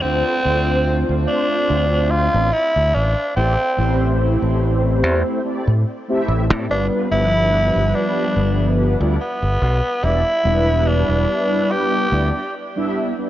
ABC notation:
X:1
M:4/4
L:1/16
Q:"Swing 16ths" 1/4=72
K:Am
V:1 name="Analog polysynth"
[A,CDFc]2 [A,CDFc]8- [A,CDFc] [A,CDFd] z4 | [A,CEGd] z [A,CEGc]8 [A,CEGd] z2 [A,CEGe]2 [A,CEGd] | [G,B,DFB]2 [F,G,B,DB]8- [F,G,B,DB] [G,B,DFd] z4 | [G,B,DEd] z [G,B,DEB]8 [G,B,DEd] z2 [G,B,DEe]2 [G,B,DEd] |]
V:2 name="Tenor saxophone"
C4 z2 D4 F2 E2 D2 | C4 z12 | D2 E4 D4 z2 B,4 | E4 D4 G4 z4 |]
V:3 name="Fingered electric bass" clef=bass
D,, z D,,3 D,, z2 D,,3 A,,, z D,, A,,, z | A,,, z A,,,3 A,,,3 E,, z2 A,, z2 A,,, A,, | G,,, z G,,,3 G,,, z2 G,,,3 D,, z G,,, B,,, z | E,,, z E,,,3 E,,, z4 D,, z4 z |]